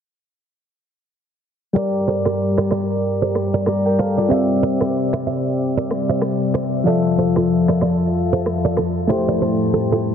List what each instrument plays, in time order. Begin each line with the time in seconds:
1.73 ambient pad G2 G3 A#4 D5, synth keys G3 G4 A#4, nylon-string guitar A#4 D5, shaker
1.78 synth keys D5
1.94 shaker
2.08 nylon-string guitar A4 C5
2.25 nylon-string guitar G4 A#4, finger snap, cross-stick, shaker
2.40 shaker
2.58 nylon-string guitar A#4 D5, finger snap, cross-stick, shaker
2.71 nylon-string guitar A#4 D5, finger snap, cross-stick, shaker
2.90 shaker
3.03 shaker
3.22 nylon-string guitar A4 C5, shaker
3.35 finger snap, cross-stick
3.54 nylon-string guitar A#4 D5, shaker
3.66 nylon-string guitar G4 A#4, synth keys D5 A#5, finger snap, cross-stick, shaker
3.86 synth keys A#4 G5, shaker
3.99 synth keys A4 F5, nylon-string guitar A4 C5, finger snap, cross-stick
4.18 synth keys F4 D5, nylon-string guitar A#4 D5, shaker
4.29 ambient pad C3 E5, synth keys C4 G4 D5, nylon-string guitar C5 E5, shaker
4.34 synth keys E5
4.50 shaker
4.63 nylon-string guitar A#4 D5
4.81 nylon-string guitar A4 C5, finger snap, cross-stick, shaker
4.95 shaker
5.13 nylon-string guitar C5 E5, finger snap, cross-stick, shaker
5.27 nylon-string guitar C5 E5, shaker
5.45 shaker
5.59 shaker
5.77 nylon-string guitar A#4 D5, shaker
5.91 finger snap, cross-stick
6.09 nylon-string guitar C5 E5, shaker
6.22 finger snap, cross-stick, shaker
6.41 shaker
6.54 nylon-string guitar A4 C5, finger snap, cross-stick
6.73 shaker
6.84 ambient pad F2 F3 A4, synth keys F3 F4 A4, nylon-string guitar A4 D5, shaker
6.89 synth keys E5
7.05 shaker
7.19 nylon-string guitar A4 C5
7.36 nylon-string guitar F4 A4, finger snap, cross-stick, shaker
7.50 shaker
7.68 nylon-string guitar A#4 D5, finger snap, cross-stick, shaker
7.81 nylon-string guitar A#4 D5, finger snap, cross-stick, shaker
8.00 shaker
8.14 shaker
8.33 nylon-string guitar A4 C5, shaker
8.46 finger snap, cross-stick
8.65 nylon-string guitar A#4 D5, shaker
8.77 nylon-string guitar F4 A4, finger snap, cross-stick, shaker
8.96 shaker
9.07 ambient pad A2 G3 C4, synth keys A3 E4 G4, nylon-string guitar A4 C5, finger snap, cross-stick
9.12 synth keys C5
9.29 nylon-string guitar A#4 D5, shaker
9.42 nylon-string guitar A4 C5, shaker
9.60 shaker
9.74 nylon-string guitar F4 A4, shaker
9.92 nylon-string guitar F4 A4, shaker
10.05 shaker